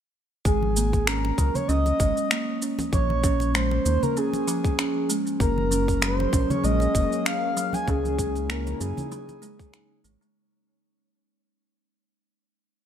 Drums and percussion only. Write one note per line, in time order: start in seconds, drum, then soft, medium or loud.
0.45 kick loud
0.45 cabasa soft
0.62 high conga medium
0.76 cabasa medium
0.93 kick medium
0.93 muted conga soft
0.93 cabasa soft
1.07 finger snap medium
1.07 cabasa soft
1.25 muted conga medium
1.38 kick medium
1.38 cabasa medium
1.55 high conga medium
1.55 low conga medium
1.55 cabasa soft
1.69 cabasa soft
1.86 muted conga medium
1.86 cabasa soft
2.00 kick loud
2.00 cabasa medium
2.17 cabasa soft
2.31 finger snap loud
2.31 cabasa soft
2.62 cabasa medium
2.79 muted conga medium
2.79 high conga medium
2.79 cabasa soft
2.93 kick loud
2.93 cabasa soft
3.10 high conga medium
3.24 kick loud
3.24 cabasa medium
3.40 muted conga soft
3.40 cabasa soft
3.55 finger snap medium
3.55 cabasa soft
3.71 muted conga medium
3.86 cabasa medium
4.03 low conga medium
4.03 cabasa soft
4.17 cabasa soft
4.33 muted conga medium
4.33 cabasa soft
4.48 cabasa medium
4.64 kick loud
4.64 cabasa soft
4.79 finger snap loud
4.79 cabasa soft
5.10 cabasa medium
5.27 cabasa soft
5.40 kick loud
5.40 cabasa soft
5.58 high conga medium
5.72 cabasa medium
5.88 kick medium
5.88 muted conga soft
5.88 cabasa soft
6.02 finger snap medium
6.02 cabasa soft
6.20 muted conga medium
6.33 kick loud
6.33 cabasa medium
6.50 high conga medium
6.50 low conga medium
6.50 cabasa soft
6.64 cabasa soft
6.80 muted conga soft
6.80 cabasa soft
6.95 kick loud
6.95 cabasa medium
7.12 cabasa soft
7.26 finger snap medium
7.26 cabasa soft
7.57 cabasa medium
7.73 muted conga medium
7.73 high conga medium
7.73 cabasa soft
7.88 kick loud
7.88 cabasa soft
8.05 high conga medium
8.05 cabasa soft
8.19 kick loud
8.19 cabasa medium
8.35 muted conga soft
8.35 cabasa soft
8.50 finger snap medium
8.50 cabasa soft
8.67 muted conga medium
8.67 cabasa soft
8.81 cabasa medium
8.97 high conga medium
8.97 low conga medium
8.97 cabasa soft
9.12 cabasa soft
9.29 muted conga medium
9.29 cabasa soft
9.42 cabasa medium
9.59 kick loud
9.59 cabasa soft
9.74 finger snap loud
9.74 cabasa soft
10.05 cabasa medium
10.22 cabasa soft